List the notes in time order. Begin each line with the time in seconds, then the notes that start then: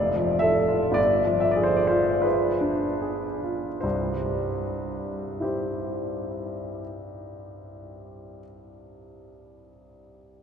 Already playing: F1 D5
0.15 F3
0.39 A4 E5
0.68 F4
0.92 G1 D5
1.25 F3
1.40 E5
1.51 D5
1.56 G#4
1.63 C5
1.77 D5
1.87 F4 C5
2.22 G#4 B4
2.61 D4
3.01 G#4
3.43 F4
3.81 C2 G2 C5
5.40 E4 G4 C5